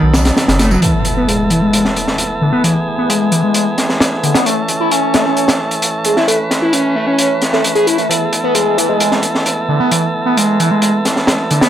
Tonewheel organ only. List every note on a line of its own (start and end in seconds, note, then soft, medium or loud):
0.00 0.80 F#3 medium
0.00 0.80 B3 medium
0.00 0.80 D#4 medium
0.00 0.79 A4 medium
0.82 11.69 E3 medium
0.82 4.42 A3 medium
0.82 4.43 B3 medium
0.82 2.62 A4 medium
2.65 4.44 G#4 medium
4.46 11.69 A3 medium
4.46 8.06 C#4 medium
4.46 6.26 A4 medium
6.27 8.08 B4 medium
8.09 11.69 B3 medium
8.09 11.69 A4 medium